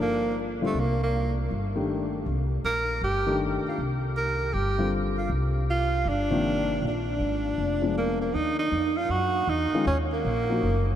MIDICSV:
0, 0, Header, 1, 5, 480
1, 0, Start_track
1, 0, Tempo, 379987
1, 946, Time_signature, 4, 2, 24, 8
1, 13840, End_track
2, 0, Start_track
2, 0, Title_t, "Tenor saxophone"
2, 0, Program_c, 0, 66
2, 19, Note_on_c, 0, 58, 90
2, 450, Note_off_c, 0, 58, 0
2, 835, Note_on_c, 0, 57, 74
2, 1006, Note_on_c, 0, 58, 83
2, 1025, Note_off_c, 0, 57, 0
2, 1283, Note_off_c, 0, 58, 0
2, 1304, Note_on_c, 0, 58, 75
2, 1726, Note_off_c, 0, 58, 0
2, 3349, Note_on_c, 0, 70, 91
2, 3792, Note_off_c, 0, 70, 0
2, 3840, Note_on_c, 0, 67, 89
2, 4278, Note_off_c, 0, 67, 0
2, 4651, Note_on_c, 0, 65, 60
2, 4792, Note_off_c, 0, 65, 0
2, 5271, Note_on_c, 0, 70, 89
2, 5725, Note_on_c, 0, 67, 87
2, 5744, Note_off_c, 0, 70, 0
2, 6213, Note_off_c, 0, 67, 0
2, 6540, Note_on_c, 0, 65, 64
2, 6695, Note_off_c, 0, 65, 0
2, 7205, Note_on_c, 0, 65, 93
2, 7690, Note_on_c, 0, 62, 94
2, 7709, Note_off_c, 0, 65, 0
2, 8636, Note_off_c, 0, 62, 0
2, 8684, Note_on_c, 0, 62, 75
2, 10044, Note_off_c, 0, 62, 0
2, 10074, Note_on_c, 0, 58, 84
2, 10355, Note_off_c, 0, 58, 0
2, 10375, Note_on_c, 0, 58, 78
2, 10536, Note_on_c, 0, 63, 93
2, 10555, Note_off_c, 0, 58, 0
2, 10843, Note_off_c, 0, 63, 0
2, 10851, Note_on_c, 0, 63, 92
2, 11332, Note_on_c, 0, 65, 88
2, 11351, Note_off_c, 0, 63, 0
2, 11504, Note_on_c, 0, 66, 102
2, 11523, Note_off_c, 0, 65, 0
2, 11995, Note_on_c, 0, 63, 93
2, 12014, Note_off_c, 0, 66, 0
2, 12464, Note_off_c, 0, 63, 0
2, 12471, Note_on_c, 0, 61, 88
2, 12608, Note_off_c, 0, 61, 0
2, 12793, Note_on_c, 0, 58, 90
2, 13840, Note_off_c, 0, 58, 0
2, 13840, End_track
3, 0, Start_track
3, 0, Title_t, "Grand piano"
3, 0, Program_c, 1, 0
3, 0, Note_on_c, 1, 53, 60
3, 0, Note_on_c, 1, 58, 60
3, 0, Note_on_c, 1, 63, 58
3, 0, Note_on_c, 1, 69, 71
3, 427, Note_off_c, 1, 53, 0
3, 431, Note_off_c, 1, 58, 0
3, 434, Note_off_c, 1, 63, 0
3, 438, Note_off_c, 1, 69, 0
3, 770, Note_on_c, 1, 50, 60
3, 778, Note_on_c, 1, 60, 57
3, 782, Note_on_c, 1, 55, 59
3, 785, Note_on_c, 1, 65, 69
3, 927, Note_off_c, 1, 50, 0
3, 931, Note_off_c, 1, 60, 0
3, 933, Note_off_c, 1, 55, 0
3, 934, Note_off_c, 1, 65, 0
3, 2216, Note_on_c, 1, 57, 54
3, 2218, Note_on_c, 1, 51, 58
3, 2223, Note_on_c, 1, 62, 51
3, 2228, Note_on_c, 1, 67, 63
3, 2831, Note_off_c, 1, 57, 0
3, 2832, Note_off_c, 1, 51, 0
3, 2835, Note_off_c, 1, 62, 0
3, 2837, Note_off_c, 1, 67, 0
3, 4124, Note_on_c, 1, 51, 70
3, 4135, Note_on_c, 1, 57, 60
3, 4136, Note_on_c, 1, 62, 58
3, 4144, Note_on_c, 1, 67, 77
3, 4744, Note_off_c, 1, 51, 0
3, 4750, Note_off_c, 1, 57, 0
3, 4750, Note_off_c, 1, 62, 0
3, 4754, Note_off_c, 1, 67, 0
3, 6038, Note_on_c, 1, 50, 59
3, 6047, Note_on_c, 1, 60, 51
3, 6048, Note_on_c, 1, 55, 51
3, 6048, Note_on_c, 1, 65, 64
3, 6661, Note_off_c, 1, 50, 0
3, 6666, Note_off_c, 1, 60, 0
3, 6666, Note_off_c, 1, 65, 0
3, 6667, Note_off_c, 1, 55, 0
3, 7957, Note_on_c, 1, 48, 62
3, 7964, Note_on_c, 1, 53, 49
3, 7966, Note_on_c, 1, 58, 57
3, 7969, Note_on_c, 1, 51, 65
3, 8581, Note_off_c, 1, 48, 0
3, 8585, Note_off_c, 1, 53, 0
3, 8586, Note_off_c, 1, 58, 0
3, 8588, Note_off_c, 1, 51, 0
3, 9876, Note_on_c, 1, 53, 54
3, 9879, Note_on_c, 1, 56, 49
3, 9879, Note_on_c, 1, 59, 44
3, 9891, Note_on_c, 1, 62, 56
3, 10501, Note_off_c, 1, 53, 0
3, 10503, Note_off_c, 1, 56, 0
3, 10503, Note_off_c, 1, 59, 0
3, 10509, Note_off_c, 1, 62, 0
3, 12299, Note_on_c, 1, 56, 58
3, 12305, Note_on_c, 1, 51, 66
3, 12310, Note_on_c, 1, 61, 64
3, 12313, Note_on_c, 1, 65, 78
3, 12450, Note_off_c, 1, 56, 0
3, 12454, Note_off_c, 1, 51, 0
3, 12456, Note_off_c, 1, 61, 0
3, 12458, Note_off_c, 1, 65, 0
3, 13253, Note_on_c, 1, 53, 58
3, 13261, Note_on_c, 1, 58, 54
3, 13264, Note_on_c, 1, 63, 56
3, 13271, Note_on_c, 1, 66, 68
3, 13408, Note_off_c, 1, 53, 0
3, 13412, Note_off_c, 1, 58, 0
3, 13413, Note_off_c, 1, 63, 0
3, 13417, Note_off_c, 1, 66, 0
3, 13840, End_track
4, 0, Start_track
4, 0, Title_t, "Upright bass"
4, 0, Program_c, 2, 32
4, 0, Note_on_c, 2, 31, 67
4, 897, Note_off_c, 2, 31, 0
4, 941, Note_on_c, 2, 36, 77
4, 1854, Note_off_c, 2, 36, 0
4, 1906, Note_on_c, 2, 31, 77
4, 2816, Note_off_c, 2, 31, 0
4, 2857, Note_on_c, 2, 36, 77
4, 3306, Note_off_c, 2, 36, 0
4, 3337, Note_on_c, 2, 34, 71
4, 3786, Note_off_c, 2, 34, 0
4, 3809, Note_on_c, 2, 31, 71
4, 4552, Note_off_c, 2, 31, 0
4, 4779, Note_on_c, 2, 36, 76
4, 5692, Note_off_c, 2, 36, 0
4, 5731, Note_on_c, 2, 31, 73
4, 6648, Note_off_c, 2, 31, 0
4, 6690, Note_on_c, 2, 36, 83
4, 7608, Note_off_c, 2, 36, 0
4, 7648, Note_on_c, 2, 31, 73
4, 8567, Note_off_c, 2, 31, 0
4, 8616, Note_on_c, 2, 34, 83
4, 9065, Note_off_c, 2, 34, 0
4, 9091, Note_on_c, 2, 32, 69
4, 9543, Note_off_c, 2, 32, 0
4, 9574, Note_on_c, 2, 29, 68
4, 10491, Note_off_c, 2, 29, 0
4, 10535, Note_on_c, 2, 39, 80
4, 11005, Note_off_c, 2, 39, 0
4, 11011, Note_on_c, 2, 41, 84
4, 11479, Note_off_c, 2, 41, 0
4, 11486, Note_on_c, 2, 42, 73
4, 11961, Note_off_c, 2, 42, 0
4, 11967, Note_on_c, 2, 40, 87
4, 12261, Note_off_c, 2, 40, 0
4, 12458, Note_on_c, 2, 39, 86
4, 12927, Note_off_c, 2, 39, 0
4, 12943, Note_on_c, 2, 34, 79
4, 13410, Note_off_c, 2, 34, 0
4, 13425, Note_on_c, 2, 30, 78
4, 13840, Note_off_c, 2, 30, 0
4, 13840, End_track
5, 0, Start_track
5, 0, Title_t, "Muted upright bass strokes"
5, 4603, Note_on_c, 9, 29, 35
5, 4730, Note_off_c, 9, 29, 0
5, 12288, Note_on_c, 9, 29, 36
5, 12415, Note_off_c, 9, 29, 0
5, 13840, End_track
0, 0, End_of_file